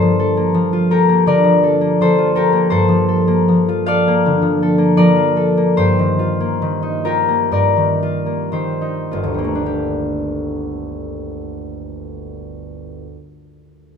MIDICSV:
0, 0, Header, 1, 2, 480
1, 0, Start_track
1, 0, Key_signature, -2, "minor"
1, 0, Tempo, 715990
1, 1798, Time_signature, 4, 2, 24, 8
1, 1798, Tempo, 756620
1, 3238, Tempo, 818554
1, 4198, Tempo, 907716
1, 4678, Tempo, 1027397
1, 5158, Tempo, 1158301
1, 5638, Tempo, 1113173
1, 7489, End_track
2, 0, Start_track
2, 0, Title_t, "Harp"
2, 0, Program_c, 0, 46
2, 0, Note_on_c, 0, 43, 46
2, 0, Note_on_c, 0, 50, 40
2, 0, Note_on_c, 0, 58, 39
2, 0, Note_on_c, 0, 65, 37
2, 0, Note_on_c, 0, 67, 44
2, 0, Note_on_c, 0, 69, 47
2, 0, Note_on_c, 0, 70, 52
2, 0, Note_on_c, 0, 72, 67
2, 0, Note_on_c, 0, 74, 64
2, 0, Note_on_c, 0, 77, 73
2, 12, Note_on_c, 0, 53, 40
2, 123, Note_off_c, 0, 69, 0
2, 131, Note_on_c, 0, 69, 43
2, 208, Note_off_c, 0, 67, 0
2, 239, Note_off_c, 0, 58, 0
2, 247, Note_on_c, 0, 58, 38
2, 356, Note_off_c, 0, 53, 0
2, 364, Note_on_c, 0, 53, 42
2, 480, Note_off_c, 0, 65, 0
2, 488, Note_on_c, 0, 65, 45
2, 601, Note_off_c, 0, 70, 0
2, 602, Note_off_c, 0, 69, 0
2, 607, Note_on_c, 0, 69, 43
2, 611, Note_on_c, 0, 70, 64
2, 614, Note_on_c, 0, 67, 49
2, 721, Note_off_c, 0, 58, 0
2, 730, Note_on_c, 0, 58, 40
2, 842, Note_off_c, 0, 50, 0
2, 843, Note_off_c, 0, 74, 0
2, 847, Note_on_c, 0, 50, 40
2, 850, Note_off_c, 0, 70, 0
2, 854, Note_on_c, 0, 74, 74
2, 858, Note_on_c, 0, 70, 53
2, 957, Note_off_c, 0, 53, 0
2, 965, Note_on_c, 0, 53, 41
2, 1086, Note_off_c, 0, 69, 0
2, 1094, Note_on_c, 0, 69, 45
2, 1206, Note_off_c, 0, 58, 0
2, 1214, Note_on_c, 0, 58, 38
2, 1292, Note_off_c, 0, 77, 0
2, 1337, Note_off_c, 0, 53, 0
2, 1344, Note_off_c, 0, 72, 0
2, 1345, Note_on_c, 0, 53, 38
2, 1347, Note_off_c, 0, 69, 0
2, 1352, Note_on_c, 0, 72, 68
2, 1355, Note_on_c, 0, 69, 52
2, 1456, Note_off_c, 0, 65, 0
2, 1464, Note_on_c, 0, 65, 42
2, 1568, Note_off_c, 0, 69, 0
2, 1573, Note_off_c, 0, 70, 0
2, 1577, Note_on_c, 0, 69, 43
2, 1581, Note_on_c, 0, 70, 65
2, 1583, Note_off_c, 0, 67, 0
2, 1591, Note_on_c, 0, 67, 50
2, 1686, Note_off_c, 0, 58, 0
2, 1694, Note_on_c, 0, 58, 41
2, 1803, Note_off_c, 0, 72, 0
2, 1810, Note_off_c, 0, 43, 0
2, 1810, Note_on_c, 0, 72, 63
2, 1813, Note_off_c, 0, 69, 0
2, 1818, Note_on_c, 0, 43, 52
2, 1821, Note_off_c, 0, 50, 0
2, 1821, Note_on_c, 0, 69, 52
2, 1918, Note_off_c, 0, 53, 0
2, 1925, Note_on_c, 0, 53, 42
2, 2046, Note_off_c, 0, 69, 0
2, 2053, Note_on_c, 0, 69, 43
2, 2167, Note_off_c, 0, 58, 0
2, 2175, Note_on_c, 0, 58, 47
2, 2299, Note_off_c, 0, 53, 0
2, 2307, Note_on_c, 0, 53, 43
2, 2427, Note_off_c, 0, 65, 0
2, 2435, Note_on_c, 0, 65, 46
2, 2547, Note_off_c, 0, 69, 0
2, 2548, Note_on_c, 0, 77, 79
2, 2551, Note_off_c, 0, 74, 0
2, 2554, Note_on_c, 0, 69, 46
2, 2558, Note_on_c, 0, 74, 63
2, 2675, Note_off_c, 0, 58, 0
2, 2682, Note_on_c, 0, 58, 46
2, 2800, Note_on_c, 0, 50, 45
2, 2892, Note_off_c, 0, 53, 0
2, 2899, Note_on_c, 0, 53, 42
2, 3023, Note_off_c, 0, 69, 0
2, 3031, Note_on_c, 0, 69, 44
2, 3121, Note_off_c, 0, 58, 0
2, 3129, Note_on_c, 0, 58, 42
2, 3242, Note_off_c, 0, 74, 0
2, 3247, Note_off_c, 0, 53, 0
2, 3250, Note_on_c, 0, 74, 70
2, 3253, Note_off_c, 0, 70, 0
2, 3254, Note_on_c, 0, 53, 42
2, 3260, Note_on_c, 0, 70, 54
2, 3353, Note_off_c, 0, 65, 0
2, 3360, Note_on_c, 0, 65, 39
2, 3474, Note_off_c, 0, 69, 0
2, 3481, Note_on_c, 0, 69, 46
2, 3595, Note_off_c, 0, 58, 0
2, 3602, Note_on_c, 0, 58, 42
2, 3711, Note_off_c, 0, 72, 0
2, 3716, Note_off_c, 0, 43, 0
2, 3718, Note_on_c, 0, 72, 67
2, 3723, Note_off_c, 0, 67, 0
2, 3723, Note_on_c, 0, 43, 47
2, 3729, Note_off_c, 0, 74, 0
2, 3730, Note_off_c, 0, 69, 0
2, 3730, Note_on_c, 0, 67, 51
2, 3738, Note_off_c, 0, 50, 0
2, 3847, Note_on_c, 0, 51, 41
2, 3957, Note_off_c, 0, 65, 0
2, 3964, Note_on_c, 0, 65, 41
2, 4082, Note_off_c, 0, 58, 0
2, 4089, Note_on_c, 0, 58, 41
2, 4207, Note_off_c, 0, 51, 0
2, 4213, Note_on_c, 0, 51, 39
2, 4323, Note_on_c, 0, 63, 42
2, 4435, Note_off_c, 0, 70, 0
2, 4438, Note_off_c, 0, 65, 0
2, 4441, Note_on_c, 0, 70, 61
2, 4444, Note_on_c, 0, 65, 43
2, 4446, Note_off_c, 0, 67, 0
2, 4452, Note_on_c, 0, 67, 46
2, 4560, Note_off_c, 0, 58, 0
2, 4566, Note_on_c, 0, 58, 35
2, 4683, Note_off_c, 0, 43, 0
2, 4687, Note_on_c, 0, 43, 38
2, 4690, Note_off_c, 0, 70, 0
2, 4690, Note_on_c, 0, 74, 59
2, 4695, Note_on_c, 0, 70, 47
2, 4799, Note_off_c, 0, 51, 0
2, 4803, Note_off_c, 0, 77, 0
2, 4804, Note_on_c, 0, 51, 36
2, 4919, Note_off_c, 0, 65, 0
2, 4925, Note_on_c, 0, 65, 38
2, 5029, Note_off_c, 0, 58, 0
2, 5035, Note_on_c, 0, 58, 30
2, 5151, Note_off_c, 0, 51, 0
2, 5153, Note_off_c, 0, 72, 0
2, 5155, Note_on_c, 0, 51, 34
2, 5158, Note_off_c, 0, 67, 0
2, 5159, Note_on_c, 0, 72, 39
2, 5163, Note_on_c, 0, 67, 30
2, 5273, Note_off_c, 0, 63, 0
2, 5278, Note_on_c, 0, 63, 31
2, 5305, Note_off_c, 0, 53, 0
2, 5398, Note_off_c, 0, 65, 0
2, 5403, Note_on_c, 0, 65, 31
2, 5408, Note_on_c, 0, 31, 36
2, 5453, Note_on_c, 0, 38, 31
2, 5497, Note_on_c, 0, 55, 30
2, 5502, Note_off_c, 0, 74, 0
2, 5509, Note_off_c, 0, 58, 0
2, 5514, Note_on_c, 0, 58, 30
2, 5539, Note_on_c, 0, 57, 30
2, 5583, Note_on_c, 0, 62, 29
2, 5624, Note_off_c, 0, 67, 0
2, 5629, Note_on_c, 0, 67, 36
2, 5657, Note_off_c, 0, 51, 0
2, 5658, Note_off_c, 0, 72, 0
2, 5659, Note_off_c, 0, 63, 0
2, 5660, Note_off_c, 0, 65, 0
2, 5662, Note_off_c, 0, 43, 0
2, 6393, Note_off_c, 0, 70, 0
2, 6898, Note_off_c, 0, 62, 0
2, 6945, Note_off_c, 0, 67, 0
2, 6971, Note_off_c, 0, 57, 0
2, 7029, Note_off_c, 0, 55, 0
2, 7081, Note_off_c, 0, 31, 0
2, 7127, Note_off_c, 0, 38, 0
2, 7191, Note_off_c, 0, 58, 0
2, 7489, End_track
0, 0, End_of_file